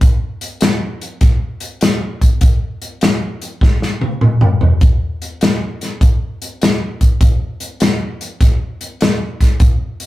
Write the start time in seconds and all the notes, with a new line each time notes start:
0.01 kick, closed hi-hat
0.41 closed hi-hat
0.61 snare, closed hi-hat
1.01 closed hi-hat
1.21 kick, snare, closed hi-hat
1.60 closed hi-hat
1.81 snare, closed hi-hat
2.21 kick, closed hi-hat
2.41 kick, closed hi-hat
2.82 closed hi-hat
3.01 snare, closed hi-hat
3.42 closed hi-hat
3.61 kick, snare
3.82 snare
4.01 high tom
4.21 mid tom
4.41 mid tom
4.61 floor tom
4.81 kick, closed hi-hat
5.22 closed hi-hat
5.41 snare, closed hi-hat
5.81 snare, closed hi-hat
6.01 kick, closed hi-hat
6.42 closed hi-hat
6.62 snare, closed hi-hat
7.01 kick, closed hi-hat
7.21 kick, closed hi-hat
7.60 closed hi-hat
7.80 snare, closed hi-hat
8.21 closed hi-hat
8.41 kick, snare, closed hi-hat
8.81 closed hi-hat
9.01 snare, closed hi-hat
9.41 kick, snare, closed hi-hat
9.60 kick, closed hi-hat
10.00 closed hi-hat